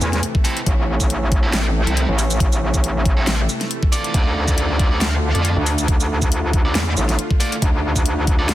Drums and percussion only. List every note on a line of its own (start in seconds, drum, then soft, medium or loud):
0.01 shaker medium
0.13 snare soft
0.13 closed hi-hat medium
0.23 closed hi-hat medium
0.35 kick loud
0.45 open hi-hat medium
0.45 shaker medium
0.57 closed hi-hat medium
0.66 kick loud
0.66 closed hi-hat medium
1.00 kick medium
1.00 shaker medium
1.10 closed hi-hat medium
1.32 kick loud
1.32 closed hi-hat medium
1.53 snare loud
1.53 clap medium
1.53 closed hi-hat medium
1.87 closed hi-hat soft
1.97 closed hi-hat medium
2.19 open hi-hat medium
2.19 shaker medium
2.31 closed hi-hat medium
2.31 shaker medium
2.40 kick loud
2.40 closed hi-hat medium
2.52 shaker medium
2.74 kick medium
2.74 shaker medium
2.84 closed hi-hat medium
3.06 kick loud
3.06 closed hi-hat soft
3.27 snare loud
3.27 clap medium
3.27 closed hi-hat medium
3.49 shaker medium
3.61 snare soft
3.61 closed hi-hat soft
3.71 closed hi-hat medium
3.83 kick loud
3.92 open hi-hat medium
3.92 shaker medium
4.04 closed hi-hat medium
4.14 kick loud
4.14 closed hi-hat medium
4.48 kick medium
4.48 shaker medium
4.58 closed hi-hat medium
4.79 kick loud
4.79 closed hi-hat soft
5.01 snare loud
5.01 clap medium
5.01 closed hi-hat medium
5.35 closed hi-hat medium
5.45 closed hi-hat medium
5.66 open hi-hat medium
5.66 shaker medium
5.78 closed hi-hat medium
5.78 shaker medium
5.88 kick loud
5.88 closed hi-hat medium
6.00 shaker medium
6.22 kick medium
6.22 shaker medium
6.32 closed hi-hat medium
6.53 kick loud
6.53 closed hi-hat medium
6.75 snare loud
6.75 clap medium
6.75 closed hi-hat medium
6.97 shaker medium
7.09 snare soft
7.09 closed hi-hat soft
7.19 closed hi-hat medium
7.31 kick loud
7.40 open hi-hat medium
7.40 shaker medium
7.52 closed hi-hat medium
7.62 kick loud
7.62 closed hi-hat medium
7.96 kick medium
7.96 shaker medium
8.06 closed hi-hat medium
8.27 kick loud
8.27 closed hi-hat medium
8.49 snare loud
8.49 clap medium
8.49 closed hi-hat medium